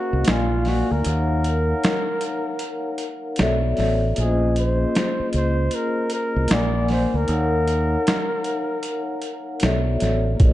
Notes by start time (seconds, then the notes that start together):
Already playing: A#3 C#4 F#4 G#4 C5 D#5 F5
0.13 C2
0.23 A#3 A#4 D5 F5, closed hi-hat
0.28 A#1 F4 G#5, snare
0.65 F#4, snare, open hi-hat
0.91 D2 A#4
1.00 D#4 A#4 C#5
1.05 D#2 F5 F#5, closed hi-hat
1.44 closed hi-hat
1.84 snare, closed hi-hat
2.21 closed hi-hat
2.59 closed hi-hat
2.98 closed hi-hat
3.36 B1 B3 F#4 A4, snare, closed hi-hat
3.40 C#5 D5 E5
3.77 A1, snare, open hi-hat
4.15 A#1 A#3 F4 G#4, closed hi-hat
4.19 C#4 G#4 C5 D#5
4.56 C5, closed hi-hat
4.95 snare, closed hi-hat
5.20 muted fingered electric bass stroke
5.33 C#2 C5, closed hi-hat
5.71 A#4, closed hi-hat
6.10 closed hi-hat
6.14 A#4
6.36 C2
6.48 A#1 A#3 A#4 D5 F#5, snare, closed hi-hat
6.52 D5 G#5
6.88 C5, snare, open hi-hat
7.14 D2 A#4
7.24 D#4 A#4 C#5, closed hi-hat
7.29 D#2 F5 F#5
7.68 closed hi-hat
8.07 snare, closed hi-hat
8.44 closed hi-hat
8.83 closed hi-hat
9.22 closed hi-hat
9.60 B1 B3 F#4 A4 C#5 D5, snare, closed hi-hat
9.64 E5
10.00 A1, snare, closed hi-hat
10.35 A#3 F4 G#4
10.40 A#1 A#4 C#5 D#5, kick, closed hi-hat